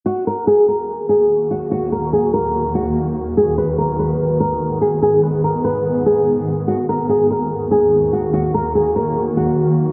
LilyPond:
<<
  \new Staff \with { instrumentName = "Nylon-string guitar" } { \time 4/4 \key ees \minor \tempo 4 = 145 ges'8 bes'8 aes'8 bes'4 aes'4 ges'8 | ges'8 bes'8 aes'8 bes'4 ges'4. | aes'8 ces''8 bes'8 ces''4 bes'4 aes'8 | aes'8 ces''8 bes'8 ces''4 aes'4. |
ges'8 bes'8 aes'8 bes'4 aes'4 ges'8 | ges'8 bes'8 aes'8 bes'4 ges'4. | }
  \new Staff \with { instrumentName = "Ambient pad" } { \time 4/4 \key ees \minor << { <ees, bes ges'>1~ | <ees, bes ges'>1 | <aes, ces' aes'>1~ | <aes, ces' aes'>1 |
<ees, bes ges'>1~ | <ees, bes ges'>1 | } \\ { ees1~ | ees1~ | ees1~ | ees1 |
ees1~ | ees1 | } >> }
>>